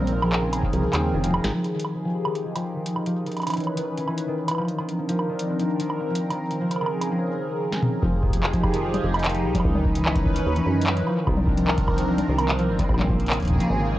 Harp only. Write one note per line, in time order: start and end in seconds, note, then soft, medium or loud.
0.00 0.42 D#3 medium
0.12 0.21 F3 medium
0.22 0.48 F3 loud
0.43 1.13 D#3 medium
0.63 0.72 F3 medium
0.73 1.19 F3 loud
0.93 3.93 C4 loud
1.14 1.59 D#3 medium
1.24 3.53 F4 medium
1.44 1.53 F3 medium
1.54 1.79 F3 medium
1.74 2.24 D#3 medium
1.95 2.04 F3 medium
2.05 2.30 F3 medium
2.25 2.75 D#3 medium
2.45 2.54 F3 medium
2.56 2.81 F3 medium
2.76 3.21 D#3 medium
2.96 3.05 F3 medium
3.06 3.21 F3 loud
3.26 3.76 D#3 medium
3.47 3.56 E3 medium
3.57 3.82 E3 medium
3.77 4.27 D#3 medium
3.97 4.06 E3 medium
4.08 4.33 E3 medium
4.28 4.63 D#3 medium
4.48 4.63 E3 medium
4.58 4.83 F3 loud
4.79 5.28 D#3 medium
4.99 5.08 F3 medium
5.09 5.34 F3 medium
5.29 5.79 D#3 medium
5.49 5.58 F3 medium
5.60 5.85 F3 loud
5.80 6.29 D#3 medium
6.00 6.09 F3 medium
6.10 6.35 F3 medium
6.31 6.46 D#3 medium
6.51 6.60 F3 medium
6.61 6.86 F3 medium
6.81 8.08 D#3 medium
7.01 7.10 F3 medium
7.12 8.02 F3 medium
8.03 8.28 F3 loud
8.23 8.73 D#3 medium
8.43 8.52 F3 medium
8.53 8.79 F3 loud
8.74 9.23 D#3 medium
8.94 9.03 F3 medium
9.04 9.29 F3 loud
9.24 9.70 D#3 medium
9.45 9.54 F3 medium
9.55 9.70 F3 loud
9.75 10.25 D#3 medium
9.95 10.04 E3 medium
10.06 10.31 E3 loud
10.26 10.75 D#3 medium
10.46 10.55 E3 medium
10.56 10.81 E3 loud
10.76 11.12 D#3 medium
10.97 11.12 E3 medium
11.07 11.32 F3 loud
11.27 11.77 D#3 medium
11.47 11.56 F3 medium
11.58 11.83 F3 loud
11.78 12.27 D#3 medium
11.98 12.07 F3 medium
12.08 12.33 F3 loud
12.28 12.78 D#3 medium
12.49 12.58 F3 medium
12.59 12.84 F3 loud
12.79 12.94 D#3 medium
12.99 13.08 F3 medium
13.10 13.35 F3 loud
13.30 13.79 D#3 medium
13.50 13.59 F3 medium
13.60 13.85 F3 loud
13.80 13.99 D#3 medium
13.91 13.99 G#3 medium